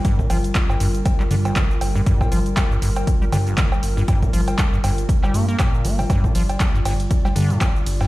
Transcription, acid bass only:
X:1
M:4/4
L:1/16
Q:"Swing 16ths" 1/4=119
K:Gm
V:1 name="Acid bass" clef=bass
G,, B,, F, z2 G,, G,, z2 G, D, G,,, G, z2 G,, | G,, B,, F, z2 G,, G,, z2 G, D, G,,, G, z2 G,, | G,, B,, F, z2 G,, G,, z2 G, B, B, B,,2 B, F,, | G,, B,, F, z2 G,, G,, z2 G, D, A,, G, z2 G,, |]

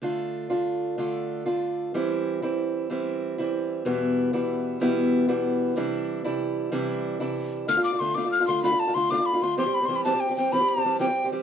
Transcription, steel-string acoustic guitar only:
X:1
M:12/8
L:1/16
Q:3/8=126
K:Ddor
V:1 name="Steel-string acoustic guitar"
[D,A,DF]6 [D,A,DF]6 [D,A,DF]6 [D,A,DF]6 | [E,G,CE]6 [E,G,CE]6 [E,G,CE]6 [E,G,CE]6 | [E,,B,,E,G,B,E]6 [E,,B,,E,G,B,E]6 [E,,B,,E,G,B,E]6 [E,,B,,E,G,B,E]6 | [C,E,G,DE]6 [C,E,G,DE]6 [C,E,G,DE]6 [C,E,G,DE]6 |
[D,A,DF] [A,DF]2 [A,DF] [D,A,DF]2 [D,A,DF] [A,DF]2 [A,DF] [D,A,DF]2 [D,A,DF] [A,DF]2 [A,DF] [D,A,DF]2 [D,A,DF] [A,DF]2 [A,DF] [D,A,DF]2 | [E,G,CG] [G,CG]2 [G,CG] [E,G,CG]2 [E,G,CG] [G,CG]2 [G,CG] [E,G,CG]2 [E,G,CG] [G,CG]2 [G,CG] [E,G,CG]2 [E,G,CG] [G,CG]2 [G,CG] [E,G,CG]2 |]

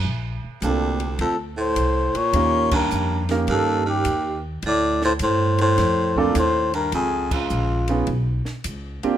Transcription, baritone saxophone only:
X:1
M:4/4
L:1/8
Q:"Swing" 1/4=105
K:Eblyd
V:1 name="Baritone saxophone" clef=bass
z2 D,,2 F,, A,,2 B,,- | B,, G,,2 z E,, E,,2 z | A,, A,, A,, A,,2 B,, A,, G,, | F,, _D,,3 z4 |]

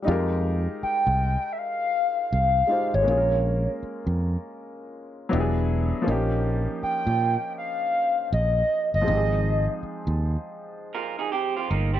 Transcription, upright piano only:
X:1
M:4/4
L:1/8
Q:"Swing 16ths" 1/4=80
K:Fm
V:1 name="Upright piano"
[G,A,EFGB]6- [G,A,EFGB] [A,EFGc] | [A,B,DFAB]6 [^F,=B,=D=EG^G]2 | [F,B,DEG]8 | [F,A,CEGA]8 |]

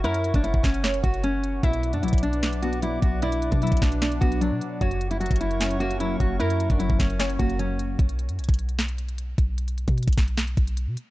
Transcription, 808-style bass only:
X:1
M:4/4
L:1/16
Q:1/4=151
K:Bm
V:1 name="808-style bass" clef=bass
F,,3 F,,,2 F,,, F,,,4 F,,,6 | B,,,3 F,, B,,, B,,,8- B,,, B,,,2- | B,,,3 B,,2 B,,, B,,,4 B,,,3 B,, z2 | F,,,4- F,,, F,,,8- F,,, F,,,2 |
F,,3 F,,,2 F,,, F,,,4 F,,,6 | B,,,3 F,, B,,, B,,,8- B,,, B,,,2- | B,,,3 B,,2 B,,, B,,,4 B,,,3 B,, z2 |]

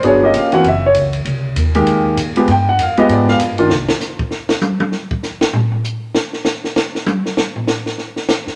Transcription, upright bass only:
X:1
M:4/4
L:1/8
Q:"Swing" 1/4=196
K:Gphr
V:1 name="Upright bass" clef=bass
G,,,2 B,,,2 _G,,,2 _D,,2 | C,,2 E,,2 F,, z B,,2 | G,,2 F,,2 A,,2 G,,2 | C,, z6 z |
z8 | z8 | z8 |]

